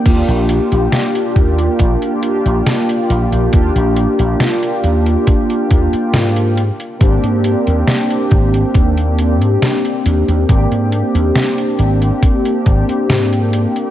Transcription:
<<
  \new Staff \with { instrumentName = "Analog polysynth" } { \time 4/4 \key ees \major \tempo 4 = 69 <bes d' f' g'>2~ <bes d' f' g'>8 <bes d' f' g'>4. | <bes d' f' g'>2~ <bes d' f' g'>8 <bes d' f' g'>4 r8 | <bes c' d' g'>2~ <bes c' d' g'>8 <bes c' d' g'>4. | <bes c' d' g'>2~ <bes c' d' g'>8 <bes c' d' g'>4. | }
  \new Staff \with { instrumentName = "Slap bass" } { \clef bass \time 4/4 \key ees \major ees,16 bes,,16 r16 bes,,16 r8 ees,16 r16 bes,,16 r8 bes,,16 r8 bes,,16 bes,,16 | ees,16 bes,,16 r16 bes,,16 r8 ees,16 r8. ees,16 r16 aes,8. r16 | aes,,16 aes,16 r16 ees,16 r8 aes,,16 r16 ees,8. aes,16 r8 ees,16 ees,16 | aes,,16 aes,16 r16 ees,16 r8 aes,,16 r8. aes,,16 r16 aes,8. r16 | }
  \new DrumStaff \with { instrumentName = "Drums" } \drummode { \time 4/4 <cymc hh bd>16 hh16 hh16 hh16 <hh sn>16 hh16 <hh bd>16 hh16 <hh bd>16 hh16 hh16 hh16 <hh sn>16 hh16 hh16 hh16 | <hh bd>16 hh16 hh16 hh16 <hh sn>16 hh16 hh16 hh16 <hh bd>16 hh16 <hh bd>16 hh16 <hh sn>16 hh16 hh16 hh16 | <hh bd>16 hh16 hh16 hh16 <hh sn>16 hh16 <hh bd>16 hh16 <hh bd>16 hh16 hh16 hh16 <hh sn>16 hh16 hh16 hh16 | <hh bd>16 hh16 hh16 hh16 <hh sn>16 hh16 hh16 hh16 <hh bd>16 hh16 <hh bd>16 hh16 <hh sn>16 hh16 hh16 hh16 | }
>>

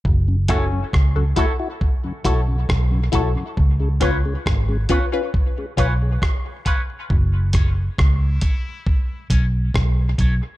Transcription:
<<
  \new Staff \with { instrumentName = "Clean electric guitar" } { \time 4/4 \key fis \minor \tempo 4 = 68 r8 <e' a' cis''>8 r8 <e' a' cis''>8 r8 <e' a' cis''>8 r8 <e' a' cis''>8 | r8 <eis' b' cis''>8 r8 <eis' b' cis''>8 r8 <eis' b' cis''>8 r8 <eis' b' cis''>8 | r8 <e' a' cis''>8 r8 <e' a' cis''>8 r8 <e' a' cis''>8 r8 <e' a' cis''>8 | }
  \new Staff \with { instrumentName = "Synth stab" } { \time 4/4 \key fis \minor r8 <e' fis' a'>16 r8 <fis' a'>16 <e' fis' a'>16 r8. <e' fis' a'>16 r8. <e' fis' a'>16 r16 | r8 <cis' eis' b'>16 r8. <cis' eis' b'>16 <cis' eis' b'>16 r8 <cis' eis' b'>16 r8. <cis' eis' b'>16 r16 | r1 | }
  \new Staff \with { instrumentName = "Trombone" } { \time 4/4 \key fis \minor r8 cis'8 r2. | r1 | r8 cis'8 e'4. cis'16 r4 r16 | }
  \new Staff \with { instrumentName = "Tonewheel organ" } { \clef bass \time 4/4 \key fis \minor r16 <fis, cis>16 <a e' fis'>16 <fis, cis>16 r16 <fis, cis>16 <a e' fis'>16 <e' fis'>16 r16 <fis, cis>16 <a e' fis'>16 <fis, cis>16 r16 <fis, cis>16 <a e' fis'>16 <fis, cis>16 | r16 <cis gis>16 <b cis' eis'>16 <cis gis>16 r16 <cis gis>16 <b cis' eis'>16 <cis' eis'>16 r16 <cis gis>16 <b cis' eis'>16 <cis gis>16 r16 <cis gis>16 <b cis' eis'>16 <cis gis>16 | r16 <fis, cis>16 r2. r8 | }
  \new Staff \with { instrumentName = "Fingered electric bass" } { \clef bass \time 4/4 \key fis \minor fis,,4 cis,8 r4 b,,8 b,,8 b,,16 r16 | cis,4 gis,,8 r4 b,,8 r4 | fis,,4 cis,8 r4 b,,8 b,,8 b,,16 r16 | }
  \new DrumStaff \with { instrumentName = "Drums" } \drummode { \time 4/4 bd8 <hh bd ss>8 <bd ss>8 <hh bd>8 bd8 <hh bd>8 <bd ss>8 <hh bd>8 | bd8 <hh bd ss>8 <bd ss>8 <hh bd>8 bd8 <hh bd>8 <bd ss>8 <hh bd>8 | bd8 <hh bd ss>8 <bd ss>8 <hh bd>8 bd8 <hh bd>8 <bd ss>8 <hh bd>8 | }
>>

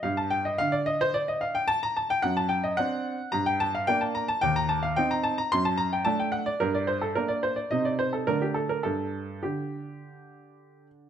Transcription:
<<
  \new Staff \with { instrumentName = "Grand piano" } { \time 4/4 \key g \minor \tempo 4 = 109 f''16 a''16 g''16 ees''16 f''16 d''16 ees''16 c''16 d''16 ees''16 f''16 g''16 a''16 bes''16 a''16 g''16 | fis''16 a''16 g''16 ees''16 fis''4 bes''16 g''16 a''16 f''16 g''16 a''16 bes''16 a''16 | g''16 bes''16 a''16 f''16 g''16 bes''16 a''16 bes''16 c'''16 a''16 bes''16 g''16 a''16 g''16 fis''16 d''16 | bes'16 d''16 c''16 a'16 bes'16 d''16 c''16 d''16 ees''16 d''16 c''16 a'16 bes'16 g'16 a'16 bes'16 |
a'4 g'2~ g'8 r8 | }
  \new Staff \with { instrumentName = "Grand piano" } { \time 4/4 \key g \minor g,4 d2. | fis,4 <c' d'>4 g,4 <bes d'>4 | ees,4 <c' ees'>4 fis,4 <a d'>4 | g,4 <bes d'>4 <c c' ees'>4 <d a d'>4 |
g,4 d2. | }
>>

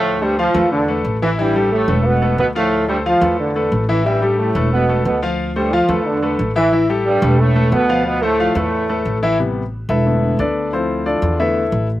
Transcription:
<<
  \new Staff \with { instrumentName = "Grand piano" } { \time 4/4 \key e \phrygian \tempo 4 = 180 <f f' f''>8 <a a' c''>8 <f f' f''>8 <a a' b'>4 <a a' b'>4 <e e' e''>8 | <e e' e''>8 <g g' a'>4 <a a' b'>4 <a a' b'>4 <f f' f''>8~ | <f f' f''>8 <a a' c''>8 <f f' f''>8 <a a' b'>4 <a a' b'>4 <e e' e''>8 | <e e' e''>8 <g g' a'>4 <a a' b'>4 <a a' b'>4 <f f' f''>8~ |
<f f' f''>8 <a a' c''>8 <f f' f''>8 <a a' b'>4 <a a' b'>4 <e e' e''>8 | <e e' e''>8 <g g' a'>4 <a a' b'>4 <a a' b'>4 <f f' f''>8~ | <f f' f''>8 <a a' c''>8 <f f' f''>8 <a a' b'>4 <a a' b'>4 <e e' e''>8 | r4. <e' a' b' e''>4. <d' a' b' d''>4 |
<f' a' c''>4 <d' f' a' d''>4 <e' a' b' e''>4. r8 | }
  \new Staff \with { instrumentName = "Grand piano" } { \time 4/4 \key e \phrygian r1 | r1 | r1 | r1 |
r1 | r1 | r1 | <c g b>8 r4. <d a b>2 |
<f c' e'>2 <d a b>8 r4. | }
  \new Staff \with { instrumentName = "Trombone section" } { \clef bass \time 4/4 \key e \phrygian <a, a>8 <g, g>8 <f f'>4 <d d'>4 r8 <e e'>8 | <g, g>4 <a, a>4 <b, b>4 <b, b>8 <a, a>8~ | <a, a>8 <g, g>8 <f f'>4 <d d'>4 r8 <e e'>8 | <g, g>4 <a, a>4 <b, b>4 <b, b>8 r8 |
r8 <g, g>8 <f f'>4 <d d'>4 r8 <e e'>8~ | <e e'>8 r8 <g, g>4 <a, a>4 <b, b>4 | <b, b>8 <a, a>4 <a, a>2 r8 | r1 |
r1 | }
  \new Staff \with { instrumentName = "Upright bass" } { \clef bass \time 4/4 \key e \phrygian d,4. e,4. a,,4~ | a,,4. e,,4. d,4~ | d,4. e,4. a,,4~ | a,,4. e,,4. d,4~ |
d,4. e,4. a,,4~ | a,,4. e,,4. d,4~ | d,4. e,4. a,,4~ | a,,4. e,,4. d,4~ |
d,4. e,4. a,,4 | }
>>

